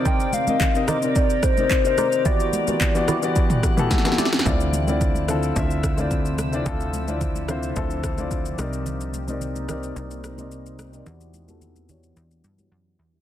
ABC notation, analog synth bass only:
X:1
M:4/4
L:1/8
Q:1/4=109
K:C
V:1 name="Analog synth bass" clef=bass
z8 | z8 | D,,4 D,,4 | D,,4 D,,3 C,,- |
C,,4 C,,4 | E,,4 E,, G,, ^F,, E,, |]